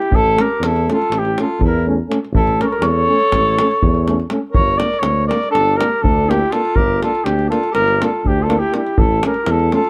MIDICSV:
0, 0, Header, 1, 7, 480
1, 0, Start_track
1, 0, Tempo, 491400
1, 99, Time_signature, 9, 3, 24, 8
1, 9667, End_track
2, 0, Start_track
2, 0, Title_t, "Flugelhorn"
2, 0, Program_c, 0, 56
2, 0, Note_on_c, 0, 67, 87
2, 150, Note_on_c, 0, 69, 102
2, 165, Note_off_c, 0, 67, 0
2, 401, Note_on_c, 0, 70, 86
2, 415, Note_off_c, 0, 69, 0
2, 640, Note_on_c, 0, 69, 89
2, 655, Note_off_c, 0, 70, 0
2, 872, Note_off_c, 0, 69, 0
2, 924, Note_on_c, 0, 69, 87
2, 1158, Note_on_c, 0, 67, 89
2, 1172, Note_off_c, 0, 69, 0
2, 1376, Note_off_c, 0, 67, 0
2, 1387, Note_on_c, 0, 69, 63
2, 1579, Note_off_c, 0, 69, 0
2, 1625, Note_on_c, 0, 70, 80
2, 1827, Note_off_c, 0, 70, 0
2, 2306, Note_on_c, 0, 69, 96
2, 2554, Note_on_c, 0, 70, 90
2, 2569, Note_off_c, 0, 69, 0
2, 2584, Note_on_c, 0, 73, 65
2, 2599, Note_off_c, 0, 70, 0
2, 2652, Note_on_c, 0, 70, 92
2, 2667, Note_off_c, 0, 73, 0
2, 2767, Note_on_c, 0, 73, 121
2, 2782, Note_off_c, 0, 70, 0
2, 4211, Note_off_c, 0, 73, 0
2, 4405, Note_on_c, 0, 73, 107
2, 4669, Note_on_c, 0, 74, 101
2, 4684, Note_off_c, 0, 73, 0
2, 4880, Note_on_c, 0, 73, 96
2, 4894, Note_off_c, 0, 74, 0
2, 5145, Note_off_c, 0, 73, 0
2, 5151, Note_on_c, 0, 74, 88
2, 5377, Note_off_c, 0, 74, 0
2, 5386, Note_on_c, 0, 69, 117
2, 5635, Note_on_c, 0, 70, 97
2, 5650, Note_off_c, 0, 69, 0
2, 5883, Note_on_c, 0, 69, 90
2, 5897, Note_off_c, 0, 70, 0
2, 6151, Note_on_c, 0, 67, 92
2, 6166, Note_off_c, 0, 69, 0
2, 6375, Note_on_c, 0, 69, 90
2, 6390, Note_off_c, 0, 67, 0
2, 6602, Note_on_c, 0, 70, 110
2, 6616, Note_off_c, 0, 69, 0
2, 6851, Note_off_c, 0, 70, 0
2, 6871, Note_on_c, 0, 69, 80
2, 7075, Note_on_c, 0, 67, 90
2, 7090, Note_off_c, 0, 69, 0
2, 7318, Note_off_c, 0, 67, 0
2, 7324, Note_on_c, 0, 69, 80
2, 7541, Note_off_c, 0, 69, 0
2, 7563, Note_on_c, 0, 70, 112
2, 7853, Note_on_c, 0, 69, 84
2, 7868, Note_off_c, 0, 70, 0
2, 8082, Note_on_c, 0, 67, 90
2, 8096, Note_off_c, 0, 69, 0
2, 8237, Note_on_c, 0, 69, 76
2, 8252, Note_off_c, 0, 67, 0
2, 8392, Note_on_c, 0, 67, 87
2, 8407, Note_off_c, 0, 69, 0
2, 8530, Note_off_c, 0, 67, 0
2, 8563, Note_on_c, 0, 67, 84
2, 8779, Note_on_c, 0, 69, 103
2, 8794, Note_off_c, 0, 67, 0
2, 9017, Note_off_c, 0, 69, 0
2, 9046, Note_on_c, 0, 70, 84
2, 9291, Note_on_c, 0, 69, 96
2, 9306, Note_off_c, 0, 70, 0
2, 9515, Note_off_c, 0, 69, 0
2, 9524, Note_on_c, 0, 69, 85
2, 9667, Note_off_c, 0, 69, 0
2, 9667, End_track
3, 0, Start_track
3, 0, Title_t, "Alto saxophone"
3, 0, Program_c, 1, 65
3, 0, Note_on_c, 1, 64, 75
3, 113, Note_off_c, 1, 64, 0
3, 113, Note_on_c, 1, 64, 91
3, 378, Note_on_c, 1, 67, 80
3, 392, Note_off_c, 1, 64, 0
3, 625, Note_on_c, 1, 64, 77
3, 640, Note_off_c, 1, 67, 0
3, 865, Note_off_c, 1, 64, 0
3, 894, Note_on_c, 1, 65, 73
3, 1120, Note_on_c, 1, 64, 69
3, 1135, Note_off_c, 1, 65, 0
3, 1357, Note_off_c, 1, 64, 0
3, 1375, Note_on_c, 1, 65, 75
3, 1573, Note_off_c, 1, 65, 0
3, 1601, Note_on_c, 1, 64, 72
3, 1815, Note_off_c, 1, 64, 0
3, 2299, Note_on_c, 1, 64, 78
3, 2553, Note_on_c, 1, 67, 69
3, 2568, Note_off_c, 1, 64, 0
3, 2573, Note_on_c, 1, 69, 67
3, 2588, Note_off_c, 1, 67, 0
3, 2690, Note_on_c, 1, 67, 66
3, 2705, Note_off_c, 1, 69, 0
3, 2796, Note_on_c, 1, 69, 104
3, 2811, Note_off_c, 1, 67, 0
3, 4225, Note_off_c, 1, 69, 0
3, 4396, Note_on_c, 1, 70, 91
3, 4663, Note_off_c, 1, 70, 0
3, 4663, Note_on_c, 1, 70, 92
3, 4900, Note_off_c, 1, 70, 0
3, 4900, Note_on_c, 1, 70, 78
3, 5148, Note_off_c, 1, 70, 0
3, 5154, Note_on_c, 1, 70, 92
3, 5369, Note_off_c, 1, 70, 0
3, 5375, Note_on_c, 1, 62, 81
3, 5642, Note_on_c, 1, 67, 78
3, 5657, Note_off_c, 1, 62, 0
3, 5888, Note_on_c, 1, 62, 70
3, 5903, Note_off_c, 1, 67, 0
3, 6112, Note_on_c, 1, 64, 78
3, 6127, Note_off_c, 1, 62, 0
3, 6349, Note_on_c, 1, 65, 83
3, 6364, Note_off_c, 1, 64, 0
3, 6611, Note_on_c, 1, 67, 97
3, 6625, Note_off_c, 1, 65, 0
3, 6851, Note_off_c, 1, 67, 0
3, 6857, Note_on_c, 1, 65, 78
3, 7079, Note_on_c, 1, 62, 69
3, 7094, Note_off_c, 1, 65, 0
3, 7324, Note_off_c, 1, 62, 0
3, 7330, Note_on_c, 1, 65, 78
3, 7535, Note_off_c, 1, 65, 0
3, 7540, Note_on_c, 1, 67, 82
3, 7822, Note_on_c, 1, 65, 67
3, 7837, Note_off_c, 1, 67, 0
3, 8057, Note_on_c, 1, 62, 63
3, 8071, Note_off_c, 1, 65, 0
3, 8202, Note_on_c, 1, 65, 72
3, 8217, Note_off_c, 1, 62, 0
3, 8367, Note_on_c, 1, 64, 86
3, 8382, Note_off_c, 1, 65, 0
3, 8518, Note_off_c, 1, 64, 0
3, 8546, Note_on_c, 1, 64, 73
3, 8751, Note_off_c, 1, 64, 0
3, 8751, Note_on_c, 1, 64, 83
3, 9003, Note_off_c, 1, 64, 0
3, 9008, Note_on_c, 1, 67, 68
3, 9226, Note_on_c, 1, 64, 70
3, 9241, Note_off_c, 1, 67, 0
3, 9483, Note_off_c, 1, 64, 0
3, 9511, Note_on_c, 1, 65, 72
3, 9667, Note_off_c, 1, 65, 0
3, 9667, End_track
4, 0, Start_track
4, 0, Title_t, "Trombone"
4, 0, Program_c, 2, 57
4, 382, Note_on_c, 2, 61, 62
4, 470, Note_off_c, 2, 61, 0
4, 861, Note_on_c, 2, 61, 60
4, 951, Note_off_c, 2, 61, 0
4, 1347, Note_on_c, 2, 61, 64
4, 1438, Note_off_c, 2, 61, 0
4, 1826, Note_on_c, 2, 61, 66
4, 1915, Note_off_c, 2, 61, 0
4, 2036, Note_on_c, 2, 61, 65
4, 2128, Note_off_c, 2, 61, 0
4, 2515, Note_on_c, 2, 61, 64
4, 2610, Note_off_c, 2, 61, 0
4, 2999, Note_on_c, 2, 61, 59
4, 3094, Note_off_c, 2, 61, 0
4, 3508, Note_on_c, 2, 61, 56
4, 3600, Note_off_c, 2, 61, 0
4, 3987, Note_on_c, 2, 61, 55
4, 4076, Note_off_c, 2, 61, 0
4, 4212, Note_on_c, 2, 61, 58
4, 4301, Note_off_c, 2, 61, 0
4, 4684, Note_on_c, 2, 62, 50
4, 4777, Note_off_c, 2, 62, 0
4, 5171, Note_on_c, 2, 62, 54
4, 5264, Note_off_c, 2, 62, 0
4, 5642, Note_on_c, 2, 62, 71
4, 5738, Note_off_c, 2, 62, 0
4, 6135, Note_on_c, 2, 62, 68
4, 6226, Note_off_c, 2, 62, 0
4, 6371, Note_on_c, 2, 62, 50
4, 6460, Note_off_c, 2, 62, 0
4, 6873, Note_on_c, 2, 62, 58
4, 6959, Note_off_c, 2, 62, 0
4, 7345, Note_on_c, 2, 62, 59
4, 7434, Note_off_c, 2, 62, 0
4, 7831, Note_on_c, 2, 62, 64
4, 7920, Note_off_c, 2, 62, 0
4, 8285, Note_on_c, 2, 62, 73
4, 8377, Note_off_c, 2, 62, 0
4, 8526, Note_on_c, 2, 62, 63
4, 8615, Note_off_c, 2, 62, 0
4, 9020, Note_on_c, 2, 61, 65
4, 9108, Note_off_c, 2, 61, 0
4, 9487, Note_on_c, 2, 61, 59
4, 9578, Note_off_c, 2, 61, 0
4, 9667, End_track
5, 0, Start_track
5, 0, Title_t, "Euphonium"
5, 0, Program_c, 3, 58
5, 355, Note_on_c, 3, 57, 59
5, 448, Note_off_c, 3, 57, 0
5, 860, Note_on_c, 3, 57, 68
5, 950, Note_off_c, 3, 57, 0
5, 1344, Note_on_c, 3, 57, 56
5, 1435, Note_off_c, 3, 57, 0
5, 1821, Note_on_c, 3, 57, 64
5, 1911, Note_off_c, 3, 57, 0
5, 2043, Note_on_c, 3, 57, 61
5, 2134, Note_off_c, 3, 57, 0
5, 2524, Note_on_c, 3, 57, 47
5, 2617, Note_off_c, 3, 57, 0
5, 3027, Note_on_c, 3, 57, 52
5, 3117, Note_off_c, 3, 57, 0
5, 3509, Note_on_c, 3, 57, 57
5, 3600, Note_off_c, 3, 57, 0
5, 3976, Note_on_c, 3, 57, 61
5, 4067, Note_off_c, 3, 57, 0
5, 4198, Note_on_c, 3, 57, 49
5, 4290, Note_off_c, 3, 57, 0
5, 4684, Note_on_c, 3, 58, 46
5, 4777, Note_off_c, 3, 58, 0
5, 5178, Note_on_c, 3, 58, 57
5, 5270, Note_off_c, 3, 58, 0
5, 5683, Note_on_c, 3, 58, 56
5, 5771, Note_off_c, 3, 58, 0
5, 6138, Note_on_c, 3, 58, 70
5, 6228, Note_off_c, 3, 58, 0
5, 6375, Note_on_c, 3, 58, 53
5, 6463, Note_off_c, 3, 58, 0
5, 6849, Note_on_c, 3, 58, 52
5, 6940, Note_off_c, 3, 58, 0
5, 7319, Note_on_c, 3, 58, 59
5, 7413, Note_off_c, 3, 58, 0
5, 7815, Note_on_c, 3, 58, 64
5, 7907, Note_off_c, 3, 58, 0
5, 8288, Note_on_c, 3, 58, 73
5, 8379, Note_off_c, 3, 58, 0
5, 8507, Note_on_c, 3, 58, 49
5, 8600, Note_off_c, 3, 58, 0
5, 9021, Note_on_c, 3, 57, 51
5, 9109, Note_off_c, 3, 57, 0
5, 9494, Note_on_c, 3, 57, 62
5, 9584, Note_off_c, 3, 57, 0
5, 9667, End_track
6, 0, Start_track
6, 0, Title_t, "Tuba"
6, 0, Program_c, 4, 58
6, 109, Note_on_c, 4, 33, 95
6, 375, Note_off_c, 4, 33, 0
6, 586, Note_on_c, 4, 40, 94
6, 856, Note_off_c, 4, 40, 0
6, 1068, Note_on_c, 4, 33, 81
6, 1340, Note_off_c, 4, 33, 0
6, 1563, Note_on_c, 4, 40, 97
6, 1950, Note_off_c, 4, 40, 0
6, 2267, Note_on_c, 4, 33, 99
6, 2536, Note_off_c, 4, 33, 0
6, 2741, Note_on_c, 4, 40, 96
6, 3014, Note_off_c, 4, 40, 0
6, 3239, Note_on_c, 4, 33, 88
6, 3509, Note_off_c, 4, 33, 0
6, 3731, Note_on_c, 4, 40, 106
6, 4116, Note_off_c, 4, 40, 0
6, 4436, Note_on_c, 4, 31, 86
6, 4703, Note_off_c, 4, 31, 0
6, 4911, Note_on_c, 4, 38, 93
6, 5181, Note_off_c, 4, 38, 0
6, 5407, Note_on_c, 4, 31, 79
6, 5674, Note_off_c, 4, 31, 0
6, 5894, Note_on_c, 4, 38, 101
6, 6277, Note_off_c, 4, 38, 0
6, 6592, Note_on_c, 4, 31, 98
6, 6859, Note_off_c, 4, 31, 0
6, 7073, Note_on_c, 4, 38, 84
6, 7341, Note_off_c, 4, 38, 0
6, 7567, Note_on_c, 4, 31, 93
6, 7833, Note_off_c, 4, 31, 0
6, 8054, Note_on_c, 4, 38, 92
6, 8435, Note_off_c, 4, 38, 0
6, 8762, Note_on_c, 4, 33, 91
6, 9024, Note_off_c, 4, 33, 0
6, 9243, Note_on_c, 4, 40, 98
6, 9506, Note_off_c, 4, 40, 0
6, 9667, End_track
7, 0, Start_track
7, 0, Title_t, "Davul"
7, 18, Note_on_c, 9, 37, 24
7, 116, Note_off_c, 9, 37, 0
7, 118, Note_on_c, 9, 43, 99
7, 216, Note_off_c, 9, 43, 0
7, 376, Note_on_c, 9, 37, 78
7, 474, Note_off_c, 9, 37, 0
7, 615, Note_on_c, 9, 37, 86
7, 713, Note_off_c, 9, 37, 0
7, 746, Note_on_c, 9, 37, 27
7, 843, Note_off_c, 9, 37, 0
7, 875, Note_on_c, 9, 37, 63
7, 973, Note_off_c, 9, 37, 0
7, 994, Note_on_c, 9, 37, 32
7, 1092, Note_off_c, 9, 37, 0
7, 1096, Note_on_c, 9, 37, 73
7, 1193, Note_off_c, 9, 37, 0
7, 1221, Note_on_c, 9, 37, 25
7, 1319, Note_off_c, 9, 37, 0
7, 1347, Note_on_c, 9, 37, 74
7, 1445, Note_off_c, 9, 37, 0
7, 1572, Note_on_c, 9, 43, 81
7, 1670, Note_off_c, 9, 43, 0
7, 2066, Note_on_c, 9, 37, 71
7, 2164, Note_off_c, 9, 37, 0
7, 2193, Note_on_c, 9, 37, 26
7, 2291, Note_off_c, 9, 37, 0
7, 2293, Note_on_c, 9, 43, 94
7, 2391, Note_off_c, 9, 43, 0
7, 2416, Note_on_c, 9, 37, 27
7, 2514, Note_off_c, 9, 37, 0
7, 2548, Note_on_c, 9, 37, 66
7, 2646, Note_off_c, 9, 37, 0
7, 2662, Note_on_c, 9, 37, 29
7, 2755, Note_off_c, 9, 37, 0
7, 2755, Note_on_c, 9, 37, 82
7, 2853, Note_off_c, 9, 37, 0
7, 3130, Note_on_c, 9, 37, 30
7, 3228, Note_off_c, 9, 37, 0
7, 3246, Note_on_c, 9, 37, 77
7, 3246, Note_on_c, 9, 43, 58
7, 3344, Note_off_c, 9, 37, 0
7, 3344, Note_off_c, 9, 43, 0
7, 3502, Note_on_c, 9, 37, 86
7, 3600, Note_off_c, 9, 37, 0
7, 3627, Note_on_c, 9, 37, 28
7, 3725, Note_off_c, 9, 37, 0
7, 3737, Note_on_c, 9, 43, 92
7, 3835, Note_off_c, 9, 43, 0
7, 3854, Note_on_c, 9, 37, 23
7, 3951, Note_off_c, 9, 37, 0
7, 3981, Note_on_c, 9, 37, 65
7, 4079, Note_off_c, 9, 37, 0
7, 4099, Note_on_c, 9, 37, 25
7, 4197, Note_off_c, 9, 37, 0
7, 4200, Note_on_c, 9, 37, 70
7, 4298, Note_off_c, 9, 37, 0
7, 4440, Note_on_c, 9, 43, 102
7, 4537, Note_off_c, 9, 43, 0
7, 4686, Note_on_c, 9, 37, 77
7, 4783, Note_off_c, 9, 37, 0
7, 4820, Note_on_c, 9, 37, 30
7, 4912, Note_off_c, 9, 37, 0
7, 4912, Note_on_c, 9, 37, 86
7, 5010, Note_off_c, 9, 37, 0
7, 5185, Note_on_c, 9, 37, 73
7, 5283, Note_off_c, 9, 37, 0
7, 5308, Note_on_c, 9, 37, 34
7, 5406, Note_off_c, 9, 37, 0
7, 5423, Note_on_c, 9, 37, 67
7, 5520, Note_off_c, 9, 37, 0
7, 5552, Note_on_c, 9, 37, 29
7, 5650, Note_off_c, 9, 37, 0
7, 5671, Note_on_c, 9, 37, 87
7, 5769, Note_off_c, 9, 37, 0
7, 5904, Note_on_c, 9, 43, 86
7, 6001, Note_off_c, 9, 43, 0
7, 6162, Note_on_c, 9, 37, 67
7, 6260, Note_off_c, 9, 37, 0
7, 6373, Note_on_c, 9, 37, 63
7, 6471, Note_off_c, 9, 37, 0
7, 6498, Note_on_c, 9, 37, 27
7, 6596, Note_off_c, 9, 37, 0
7, 6600, Note_on_c, 9, 43, 86
7, 6698, Note_off_c, 9, 43, 0
7, 6863, Note_on_c, 9, 37, 57
7, 6960, Note_off_c, 9, 37, 0
7, 6984, Note_on_c, 9, 37, 28
7, 7081, Note_off_c, 9, 37, 0
7, 7093, Note_on_c, 9, 37, 71
7, 7191, Note_off_c, 9, 37, 0
7, 7217, Note_on_c, 9, 37, 26
7, 7315, Note_off_c, 9, 37, 0
7, 7344, Note_on_c, 9, 37, 57
7, 7442, Note_off_c, 9, 37, 0
7, 7457, Note_on_c, 9, 37, 29
7, 7555, Note_off_c, 9, 37, 0
7, 7567, Note_on_c, 9, 37, 69
7, 7665, Note_off_c, 9, 37, 0
7, 7695, Note_on_c, 9, 37, 26
7, 7793, Note_off_c, 9, 37, 0
7, 7831, Note_on_c, 9, 37, 80
7, 7929, Note_off_c, 9, 37, 0
7, 8064, Note_on_c, 9, 43, 69
7, 8162, Note_off_c, 9, 43, 0
7, 8302, Note_on_c, 9, 37, 69
7, 8400, Note_off_c, 9, 37, 0
7, 8534, Note_on_c, 9, 37, 62
7, 8632, Note_off_c, 9, 37, 0
7, 8660, Note_on_c, 9, 37, 28
7, 8758, Note_off_c, 9, 37, 0
7, 8770, Note_on_c, 9, 43, 108
7, 8867, Note_off_c, 9, 43, 0
7, 9016, Note_on_c, 9, 37, 81
7, 9114, Note_off_c, 9, 37, 0
7, 9125, Note_on_c, 9, 37, 33
7, 9223, Note_off_c, 9, 37, 0
7, 9245, Note_on_c, 9, 37, 83
7, 9342, Note_off_c, 9, 37, 0
7, 9372, Note_on_c, 9, 37, 24
7, 9470, Note_off_c, 9, 37, 0
7, 9498, Note_on_c, 9, 37, 61
7, 9595, Note_off_c, 9, 37, 0
7, 9617, Note_on_c, 9, 37, 30
7, 9667, Note_off_c, 9, 37, 0
7, 9667, End_track
0, 0, End_of_file